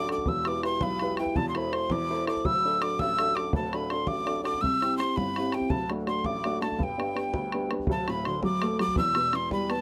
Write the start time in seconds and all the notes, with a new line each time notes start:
Already playing: D1
0.09 D4 F#4 A4 D6, bodhran
0.18 bodhran
0.26 E1 E2 E6, bodhran
0.45 E4 G4 B4 D6, bodhran
0.63 E4 G4 B4 C6, bodhran
0.81 B1 B5, bodhran
0.99 E4 G4 B4, bodhran
1.17 E4 G4 B4 G5, bodhran
1.26 bodhran
1.36 E1 E2 A5, bodhran
1.49 C6
1.55 E4 A4 C5 B5, bodhran
1.72 E4 A4 C5 C6, bodhran
1.90 E2 D6, bodhran
2.10 E4 A4 C5
2.27 E4 A4 C5 D6, bodhran
2.37 bodhran
2.45 D1 D2 E6, bodhran
2.65 D4 F#4 A4
2.82 D4 F#4 A4 D6, bodhran
2.99 A1 E6, bodhran
3.19 D4 F#4 A4, bodhran
3.35 D4 F#4 A4 D6, bodhran
3.53 D1 D2 A5, bodhran
3.73 D4 F#4 A4 B5, bodhran
3.90 D4 F#4 A4 C6, bodhran
4.07 A1 D6, bodhran
4.26 D4 F#4 A4, bodhran
4.44 D4 F#4 A4 D6, bodhran
4.54 bodhran
4.61 C2 E6, bodhran
4.81 C4 E4 G4, bodhran
4.98 C4 E4 G4 C6, bodhran
5.16 G1 B5, bodhran
5.36 C4 E4 G4, bodhran
5.52 C4 E4 G4 G5, bodhran
5.61 bodhran
5.70 D1 D2 A5, bodhran
5.90 A3 D4 F#4, bodhran
6.06 A3 D4 F#4 C6, bodhran
6.24 A1 D6, bodhran
6.44 A3 D4 F#4, bodhran
6.61 A3 D4 F#4 A5, bodhran
6.72 bodhran
6.78 G1 G2 A5, bodhran
6.83 G5
6.98 B3 D4 G4, bodhran
7.15 B3 D4 G4, bodhran
7.34 D2, bodhran
7.52 B3 D4 G4, bodhran
7.70 B3 D4 G4, bodhran
7.79 bodhran
7.87 D1 D2, bodhran
7.91 A5
8.08 A2 B5, bodhran
8.25 D3 C6, bodhran
8.43 F#3 D6, bodhran
8.62 A3, bodhran
8.79 F#3 D6, bodhran
8.88 bodhran
8.96 E1 E2 E6, bodhran
9.15 B2, bodhran
9.33 E3 C6, bodhran
9.51 G3 B5, bodhran
9.70 B3 A5, bodhran